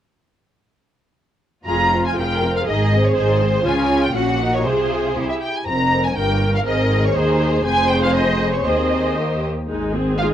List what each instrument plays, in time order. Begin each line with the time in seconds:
1.66 double bass section F1, cello section F2, viola section F4, violin section F4 G#4 A#5
1.93 violin section C4 F4
2.07 violin section G#5
2.17 double bass section F1, cello section F2, violin section F4 G#4 G5, viola section A#4
2.44 violin section C4 F4
2.56 violin section F5
2.67 double bass section G#1, cello section G#2, violin section D#4 G#4 D#5, viola section G#4
2.94 violin section C4 C5
3.05 violin section C#5
3.16 double bass section G#1, cello section G#2, violin section D#4 G#4 C5
3.40 violin section C4 C5
3.64 double bass section C#2, cello section C#3, violin section C#4 F4 G#5, viola section F4
4.03 violin section G5
4.14 double bass section A#1, cello section A#2, violin section C#4 F#4 F#5, viola section F#4
4.40 violin section D#4
4.54 violin section C#5
4.64 double bass section C2, cello section C3, violin section F4 G#4 C5, viola section G#4
5.16 double bass section C2, cello section C3, violin section E4 G4
5.30 violin section E5
5.41 violin section G5
5.56 violin section G#5
5.66 double bass section F1, cello section F2, violin section C4 A#4 A#5
6.05 violin section G#5
6.16 double bass section G1, cello section G2, violin section A#3 G5, viola section A#4
6.55 violin section F5
6.66 double bass section G#1, cello section G#2, violin section C4 G#4 D#5
7.04 violin section C#5
7.15 double bass section D#2, cello section D#2, violin section D#4 G#4 C5, viola section G#4
7.65 double bass section F1, cello section F2, violin section C4 G#4 G#5, viola section C5
7.90 violin section G5
8.03 violin section F5
8.15 violin section D#5
8.53 violin section C#5
8.65 double bass section D#2, cello section D#2, violin section C4 G#4 C5, viola section D#5
9.17 violin section A#3 G4
9.69 double bass section G#1, viola section G#3 D#4
9.94 viola section C4 G#4
10.18 viola section G#3 D#4, violin section F4 F5, cello section G#4